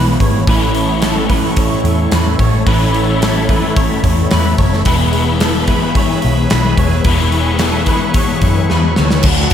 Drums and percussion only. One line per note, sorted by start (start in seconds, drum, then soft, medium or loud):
0.20 kick medium
0.20 open hi-hat medium
0.47 kick loud
0.47 open hi-hat medium
0.75 open hi-hat medium
1.02 snare loud
1.02 open hi-hat medium
1.30 kick medium
1.30 open hi-hat medium
1.56 kick loud
1.56 open hi-hat medium
1.85 open hi-hat medium
2.12 snare loud
2.12 open hi-hat medium
2.39 kick medium
2.39 open hi-hat medium
2.67 kick loud
2.67 open hi-hat medium
2.94 open hi-hat soft
3.22 snare loud
3.22 open hi-hat medium
3.49 kick medium
3.49 open hi-hat medium
3.77 kick loud
3.77 open hi-hat medium
4.04 kick medium
4.04 open hi-hat medium
4.31 snare loud
4.31 open hi-hat medium
4.58 kick medium
4.58 open hi-hat medium
4.73 snare soft
4.85 kick loud
4.85 open hi-hat medium
5.13 open hi-hat medium
5.40 snare loud
5.40 open hi-hat medium
5.67 kick medium
5.67 open hi-hat medium
5.95 kick loud
5.95 open hi-hat medium
6.22 open hi-hat medium
6.50 snare loud
6.50 open hi-hat medium
6.77 kick medium
6.77 open hi-hat medium
7.04 kick loud
7.04 open hi-hat medium
7.32 open hi-hat medium
7.59 snare loud
7.59 open hi-hat medium
7.86 kick medium
7.86 open hi-hat medium
8.14 kick loud
8.14 open hi-hat medium
8.41 kick medium
8.41 open hi-hat medium
8.70 snare medium
8.96 snare medium
9.11 snare medium
9.23 kick loud
9.23 crash loud
9.50 open hi-hat medium